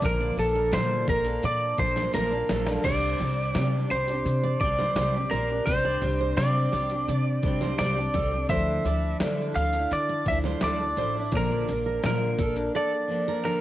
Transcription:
0.00 upright bass A#1, steel-string acoustic guitar A#2 D3 F3 A#3 D4, kick, shaker
0.05 electric slide guitar A#4
0.21 steel-string acoustic guitar D5
0.36 upright bass A#1, steel-string acoustic guitar F3 A#3 D4 A4, electric slide guitar A4, shaker
0.55 steel-string acoustic guitar A#4
0.72 steel-string acoustic guitar A#2 D3 F3 A#3 D4 A4, upright bass A#2, electric slide guitar C5, snare, shaker
1.07 upright bass A#1, steel-string acoustic guitar F3 A#3 D4 A4 A#4, electric slide guitar A#4, kick, shaker
1.25 steel-string acoustic guitar F3 A#3 D4 A4, shaker
1.43 upright bass A#2, steel-string acoustic guitar D5, electric slide guitar D5, shaker
1.77 upright bass A#1, steel-string acoustic guitar F3 A#3 D4 A4, electric slide guitar C5, kick, shaker
1.96 steel-string acoustic guitar C5, snare, shaker
2.12 upright bass A#1, steel-string acoustic guitar A#2 D3 F3 A#3 D4 A4 A#4, electric slide guitar A#4, snare, shaker
2.30 steel-string acoustic guitar F3 A#3 D4 A4
2.48 upright bass A#1, steel-string acoustic guitar F3 A#3 D4 A4, snare, shaker
2.65 steel-string acoustic guitar F3 A#3 D4 A4, snare
2.82 upright bass C2, steel-string acoustic guitar C3 G3 C4 D4 G4 C5, electric slide guitar D5, kick, crash
3.18 upright bass C2, steel-string acoustic guitar G3 C4 D4 G4 D5, shaker
3.54 steel-string acoustic guitar C3 G3 C4 D4 G4, upright bass C3, snare, shaker
3.89 upright bass C2, steel-string acoustic guitar G3 C4 D4 G4, electric slide guitar C5, shaker
4.07 steel-string acoustic guitar D4 G4, shaker
4.11 steel-string acoustic guitar C4
4.26 upright bass C3, shaker
4.43 steel-string acoustic guitar D5
4.60 upright bass C2, steel-string acoustic guitar G3 C4 D4 G4, electric slide guitar D5, kick, shaker
4.79 steel-string acoustic guitar C5, snare
4.95 upright bass C2, steel-string acoustic guitar C3 G3 C4 D4 G4 C5, snare, shaker
5.14 steel-string acoustic guitar C4 D4 G4
5.31 upright bass A#1, steel-string acoustic guitar G3 C4 D4 G4 C5, electric slide guitar A#4, shaker
5.49 steel-string acoustic guitar C4 D4 G4
5.66 upright bass C2, steel-string acoustic guitar C3 G3 C4 D4 G4, electric slide guitar C5, kick, shaker
5.85 steel-string acoustic guitar D5
6.02 upright bass C2, steel-string acoustic guitar G3 C4 D4 G4, shaker
6.20 steel-string acoustic guitar C5
6.37 upright bass C3, steel-string acoustic guitar C3 G3 C4 D4 G4, electric slide guitar D5, snare, shaker
6.72 upright bass C2, steel-string acoustic guitar G3 C4 D4 G4 D5, shaker
6.89 steel-string acoustic guitar C4 D4 G4, shaker
7.08 upright bass C3, steel-string acoustic guitar D5, shaker
7.43 upright bass C2, steel-string acoustic guitar G3 C4 D4 G4, kick, shaker
7.61 steel-string acoustic guitar C5, snare
7.78 upright bass C2, steel-string acoustic guitar C3 G3 C4 D4 G4 C5, electric slide guitar D5, snare, shaker
7.95 steel-string acoustic guitar C4 D4 G4
8.13 upright bass C2, steel-string acoustic guitar G3 C4 D4 G4 A4, kick, shaker
8.31 steel-string acoustic guitar C4 D4 G4
8.49 upright bass D2, steel-string acoustic guitar D3 F3 D4 E4 A4 C5, electric slide guitar E5, kick, shaker
8.84 upright bass D2, steel-string acoustic guitar F3 D4 E4 A4 D5, shaker
9.20 steel-string acoustic guitar D3 F3 D4 E4 A4, upright bass D3, snare, shaker
9.54 upright bass D2, steel-string acoustic guitar F3 D4 E4 A4, electric slide guitar F5, shaker
9.73 steel-string acoustic guitar D4 E4 A4, shaker
9.91 upright bass D3, electric slide guitar D5, shaker
10.09 steel-string acoustic guitar D5
10.26 upright bass D2, steel-string acoustic guitar F3 D4 E4 A4, electric slide guitar E5, kick, shaker
10.44 steel-string acoustic guitar C5, snare
10.61 upright bass D2, steel-string acoustic guitar D3 F3 D4 E4 A4 C5, electric slide guitar D5, snare, shaker
10.79 steel-string acoustic guitar D4 E4 A4
10.97 upright bass A1, steel-string acoustic guitar F3 D4 E4 A4 C5, shaker
11.15 steel-string acoustic guitar D4 E4 A4
11.32 upright bass A#1, steel-string acoustic guitar A#2 D3 F3 A#3 D4, kick, shaker
11.37 electric slide guitar A#4
11.51 steel-string acoustic guitar D5
11.67 upright bass A#1, steel-string acoustic guitar F3 A#3 D4, shaker
11.86 steel-string acoustic guitar A#4
12.03 steel-string acoustic guitar A#2 D3 F3 A#3 D4, upright bass A#2, electric slide guitar A#4, snare, shaker
12.38 upright bass A#1, steel-string acoustic guitar F3 A#3 D4 A4, kick, shaker
12.55 steel-string acoustic guitar F3 A#3 D4 A4, shaker
12.75 steel-string acoustic guitar A4, electric slide guitar D5
13.08 steel-string acoustic guitar F3 A#3 D4 A4
13.28 steel-string acoustic guitar A#4
13.43 steel-string acoustic guitar A#2 D3 F3 A#3 D4 A4, electric slide guitar A#4

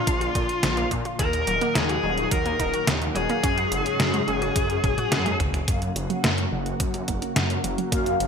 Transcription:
Already playing: analog synth pad A#2 D3 F3 D4 F4, lead electric guitar F4
0.07 detuned saw bass A#1, synth arpeggio sound D4, kick, closed hi-hat
0.21 synth arpeggio sound F4, closed hi-hat
0.35 detuned saw bass A#2, synth arpeggio sound D3, kick, closed hi-hat
0.49 closed hi-hat
0.63 detuned saw bass A#1, synth arpeggio sound F3, snare, closed hi-hat
0.77 synth arpeggio sound A#3, closed hi-hat
0.91 detuned saw bass A#2, synth arpeggio sound D4, kick, closed hi-hat
1.05 synth arpeggio sound F4, closed hi-hat
1.19 detuned saw bass D#2, synth arpeggio sound D#3, analog synth pad D#3 F#3 D#4 F#4, lead electric guitar A#4, kick, closed hi-hat
1.33 closed hi-hat
1.47 detuned saw bass D#1, synth arpeggio sound F#3, closed hi-hat
1.61 synth arpeggio sound A#3, closed hi-hat
1.75 detuned saw bass D#2, synth arpeggio sound D#4, lead electric guitar G#4, snare, closed hi-hat
1.89 synth arpeggio sound F#4, closed hi-hat
2.04 detuned saw bass D#1, synth arpeggio sound D#3
2.18 closed hi-hat
2.31 detuned saw bass D#2, synth arpeggio sound F#3, lead electric guitar A#4, kick, closed hi-hat
2.46 synth arpeggio sound A#3, closed hi-hat
2.60 detuned saw bass D#1, synth arpeggio sound D#4, kick, closed hi-hat
2.74 synth arpeggio sound F#4, closed hi-hat
2.87 detuned saw bass D#2, synth arpeggio sound D#3, snare, closed hi-hat
3.02 closed hi-hat
3.16 detuned saw bass D#1, synth arpeggio sound F#3, lead electric guitar G#4, closed hi-hat
3.30 synth arpeggio sound A#3, closed hi-hat
3.43 detuned saw bass F#2, analog synth pad G#2 C#3 C#4, synth arpeggio sound C#4, kick, closed hi-hat
3.58 synth arpeggio sound F#4, closed hi-hat
3.72 detuned saw bass F#1, synth arpeggio sound C#3, closed hi-hat
3.86 closed hi-hat
4.00 detuned saw bass F#2, synth arpeggio sound F#3, snare, closed hi-hat
4.14 synth arpeggio sound G#3, closed hi-hat
4.28 detuned saw bass F#1, synth arpeggio sound C#4, closed hi-hat
4.42 synth arpeggio sound F#4, closed hi-hat
4.56 detuned saw bass F#2, synth arpeggio sound C#3, kick, closed hi-hat
4.70 closed hi-hat
4.84 detuned saw bass F#1, synth arpeggio sound C#4, kick, closed hi-hat, high tom
4.98 synth arpeggio sound F#4, closed hi-hat, high tom
5.12 detuned saw bass F#2, synth arpeggio sound F#4, snare, closed hi-hat, mid tom
5.26 synth arpeggio sound G#3, closed hi-hat, mid tom
5.40 detuned saw bass F#1, synth arpeggio sound C#3, kick, closed hi-hat, mid tom
5.54 closed hi-hat, mid tom
5.68 detuned saw bass F#2, synth arpeggio sound C#3, analog synth pad C#3 F#3 A#3 F#4, analog polysynth A#3 F#4 F5, kick, closed hi-hat
5.82 closed hi-hat
5.96 detuned saw bass F#1, synth arpeggio sound F3, closed hi-hat
6.10 synth arpeggio sound F#3, analog polysynth A#3 F#4 F#5, closed hi-hat
6.24 detuned saw bass F#2, synth arpeggio sound A#3, snare, closed hi-hat
6.38 synth arpeggio sound C#4, closed hi-hat
6.52 detuned saw bass F#1, synth arpeggio sound C#3
6.66 closed hi-hat
6.80 detuned saw bass F#2, synth arpeggio sound F3, kick, closed hi-hat
6.94 synth arpeggio sound F#3, closed hi-hat
7.08 detuned saw bass F#1, synth arpeggio sound A#3, kick, closed hi-hat
7.22 synth arpeggio sound C#4, closed hi-hat
7.36 detuned saw bass F#2, synth arpeggio sound C#3, snare, closed hi-hat
7.50 closed hi-hat
7.64 detuned saw bass F#1, synth arpeggio sound F3, closed hi-hat
7.78 synth arpeggio sound F#3, closed hi-hat
7.92 detuned saw bass F#2, synth arpeggio sound A#3, analog polysynth A#3 F#4 F5, analog synth pad G#4, kick, closed hi-hat
8.06 synth arpeggio sound C#4, closed hi-hat
8.20 detuned saw bass F#1, synth arpeggio sound C#3, closed hi-hat

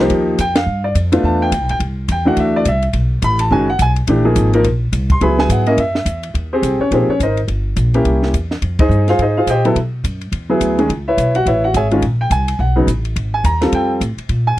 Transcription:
0.00 upright piano F3 A#3 D#4 G4 C5
0.10 upright bass D#2, kick, ride
0.38 upright bass F2, upright piano G5, kick, hi-hat pedal, ride
0.55 upright piano F5, snare, ride
0.66 upright bass G2
0.84 upright piano D5
0.95 upright bass F2, kick, hi-hat pedal, ride
1.12 upright piano A3 B3 D4 F4, ride
1.23 upright bass E2, upright piano A5, kick
1.42 upright piano G5
1.52 upright bass D2, kick, hi-hat pedal, ride
1.61 upright bass B1
1.69 upright bass G1, upright piano G5, ride
1.80 upright bass C2, kick, ride
2.08 upright bass E2, upright piano G5, kick, hi-hat pedal, ride
2.25 upright piano E3 A3 D4 F#4 F#5
2.37 upright bass D2, upright piano E5, kick, ride
2.56 upright piano D5
2.65 upright bass C2, upright piano E5, kick, hi-hat pedal, ride
2.82 ride
2.93 upright bass B1, kick, ride
3.22 upright bass A1, upright piano B5, kick, hi-hat pedal, ride
3.39 upright piano A5, ride
3.50 upright bass F#1, upright piano D#3 G#3 C#4 F#4 G#5, kick
3.70 upright piano F#5
3.79 upright bass B1, upright piano G#5, kick, hi-hat pedal, ride
3.96 ride
4.07 upright bass A#1, upright piano E3 A3 D4 G4, kick, ride
4.25 upright piano F3 A#3 D#4 G#4
4.36 upright bass G#1, kick, hi-hat pedal, ride
4.53 upright piano F3 A#3 D#4 A#4, ride
4.64 upright bass A#1, kick, ride
4.92 upright bass C2, kick, hi-hat pedal, ride
5.10 upright piano C6, kick, ride
5.20 upright bass C#2, upright piano F#3 B3 E4 G#4 B5, kick, ride
5.39 upright piano G#5, snare
5.49 upright bass G#2, upright piano F#5, kick, hi-hat pedal, ride
5.66 upright piano A#3 C#4 E4 A#4 D#5, ride
5.77 upright bass F#2, upright piano E5, kick, ride
5.95 snare
6.05 upright bass E2, kick, hi-hat pedal, ride
6.23 ride
6.34 upright bass D#2, kick, ride
6.53 upright piano C4 G4 G#4 C5
6.62 upright bass C2, kick, hi-hat pedal, ride
6.79 upright piano C#4 C#5, muted upright bass stroke
6.91 upright bass A#1, upright piano F3 A#3 C4 D#4 G4 G#4 C5, kick, ride
7.07 upright piano C#4 C#5, muted upright bass stroke
7.20 upright bass G#1, upright piano D#4 A#4 C5 D#5, kick, hi-hat pedal, ride
7.37 ride
7.48 upright bass G1, kick, ride
7.76 upright bass A#1, kick, hi-hat pedal, ride
7.94 upright piano A#3 C#4 E4 G4, ride
8.05 upright bass C2, kick, ride
8.23 snare
8.34 upright bass E2, kick, hi-hat pedal, ride
8.51 snare
8.62 upright bass F2, kick, ride
8.79 upright piano D#4 G#4 C5 D#5, kick, ride
8.89 upright bass G2, hi-hat pedal
9.08 upright piano F4 G#4 C5 F5, snare, ride
9.18 upright bass G#2, upright piano D#4 G#4 C5 D#5, kick, ride
9.37 upright piano F4 G#4 C5 F5
9.47 upright bass A#2, upright piano G4 C5 D#5 G5, kick, hi-hat pedal, ride
9.65 upright piano F#3 B3 E4 A4, ride
9.75 upright bass B2, kick, ride
10.04 upright bass F#2, kick, hi-hat pedal, ride
10.21 ride
10.32 upright bass E2, kick, ride
10.49 upright piano F#3 B3 E4 G#4
10.60 upright bass D2, kick, hi-hat pedal, ride
10.78 upright piano D#3 G#3 C#4 G#4, ride
10.89 upright bass C#2, kick, ride
11.08 upright piano E4 B4 C#5 E5
11.17 upright bass B1, kick, hi-hat pedal, ride
11.35 upright piano F#4 F#5, ride
11.46 upright bass A1, upright piano E4 B4 C#5 E5, kick, ride
11.64 upright piano F#4 F#5
11.74 upright bass G#1, upright piano G#4 C#5 E5 G#5, kick, hi-hat pedal, ride
11.91 upright piano D#3 G#3 C#4 F4, ride
12.02 upright bass A#1, kick, ride
12.21 upright piano G5
12.30 upright bass C2, upright piano G#5, kick, hi-hat pedal, ride
12.48 ride
12.59 upright bass B1, upright piano F#5, kick
12.76 upright piano C#3 F#3 B3 D#4
12.87 upright bass A1, kick, hi-hat pedal, ride
13.05 ride
13.15 upright bass G#1, kick, ride
13.34 upright piano G#5
13.44 upright bass D#2, upright piano A#5, kick, hi-hat pedal, ride
13.61 upright piano G3 C4 F4 A4, snare, ride
13.72 upright bass F2, upright piano G5, kick, ride
14.01 upright bass A2, kick, hi-hat pedal, ride
14.17 muted upright bass stroke, ride
14.29 upright bass A#2, kick, ride
14.47 upright piano G#5

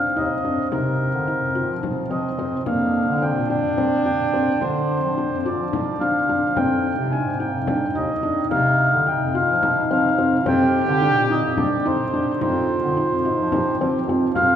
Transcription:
Already playing: french horn C4, accordion F5
0.16 bass clarinet D#2, felt piano D#4, accordion D#5
0.45 bass clarinet F2, felt piano D4
0.72 bass clarinet C3, felt piano D#4, accordion A#4, frame drum
1.14 bass clarinet D3
1.28 felt piano D#4
1.42 bass clarinet F2
1.55 felt piano F4
1.70 bass clarinet F3
1.83 felt piano D#4, frame drum
2.11 bass clarinet F3, felt piano C4, accordion D#5
2.39 bass clarinet F2, felt piano C4
2.66 bass clarinet F2, felt piano A#3, french horn D4, accordion F5, frame drum
3.09 bass clarinet D3
3.22 felt piano C4, accordion G5
3.37 bass clarinet A#2
3.50 felt piano D4, accordion G5
3.65 bass clarinet F2
3.78 felt piano C4, frame drum
4.05 bass clarinet F2, felt piano D4, accordion G5
4.34 bass clarinet F2, felt piano C4
4.61 bass clarinet D3, felt piano D4, accordion C5, frame drum
5.03 bass clarinet F3
5.18 felt piano D4
5.31 bass clarinet F2
5.45 felt piano F4, accordion D5
5.59 bass clarinet F3
5.73 felt piano D#4, frame drum
6.00 bass clarinet F3, felt piano D4, accordion F5, frame drum
6.28 bass clarinet F2, felt piano D4, frame drum
6.56 bass clarinet F2, felt piano C4, french horn D#4, accordion G5, frame drum
6.98 bass clarinet C3
7.12 felt piano D4, accordion G#5
7.26 bass clarinet G#2
7.40 felt piano D#4, accordion G5
7.54 bass clarinet F2
7.67 felt piano D4, frame drum
7.95 bass clarinet D#2, felt piano D#4, accordion D#5
8.23 bass clarinet F2, felt piano D4
8.51 bass clarinet C3, felt piano D#4, accordion F5, frame drum
8.94 bass clarinet D3
9.07 felt piano D#4, accordion G5
9.21 bass clarinet F2
9.35 felt piano F4, accordion F5
9.49 bass clarinet F3
9.63 felt piano D#4, frame drum
9.91 bass clarinet F3, felt piano C4, accordion F5
10.18 bass clarinet F2, felt piano C4
10.46 bass clarinet F2, felt piano C4, french horn G4, accordion G5, frame drum
10.88 bass clarinet D3
11.02 felt piano D4
11.16 bass clarinet A#2
11.30 felt piano D#4, accordion D#5
11.44 bass clarinet F2
11.57 felt piano D4, accordion D5, frame drum
11.86 bass clarinet F2, felt piano D#4, accordion C5
12.14 bass clarinet F2, felt piano D4
12.41 bass clarinet F2, felt piano D#4, french horn F4, accordion C5, frame drum
12.69 frame drum
12.84 bass clarinet D3
12.97 felt piano D#4
13.12 bass clarinet F2
13.25 french horn D#4, felt piano F4
13.39 bass clarinet F3
13.52 felt piano D#4, french horn G4, frame drum
13.81 bass clarinet F3, felt piano C4
14.08 bass clarinet F2, felt piano C4, french horn F4
14.35 bass clarinet F2, french horn F4, felt piano F4, accordion F5, frame drum

